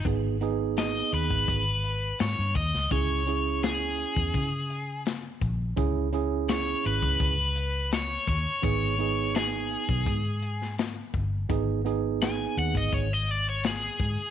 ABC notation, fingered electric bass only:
X:1
M:4/4
L:1/16
Q:1/4=84
K:G#m
V:1 name="Fingered electric bass" clef=bass
G,,,6 D,, G,,, G,,,4 G,, =G,, D,, C,, | C,,6- C,, E,, C,6 A,,,2 | C,,6 G,,, C,, C,,6 D,, z | G,,,6- G,,, B,,, G,,6 =G,,,2 |
G,,,6 D,, G,,, G,,,6 G,, z |]